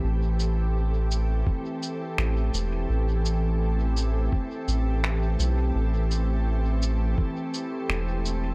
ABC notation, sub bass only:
X:1
M:4/4
L:1/8
Q:"Swing 16ths" 1/4=84
K:Am
V:1 name="Sub bass" clef=bass
A,,,4 z2 A,,, E,,, | A,,,4 z A,,,2 B,,, | A,,,4 z2 E,,,2 |]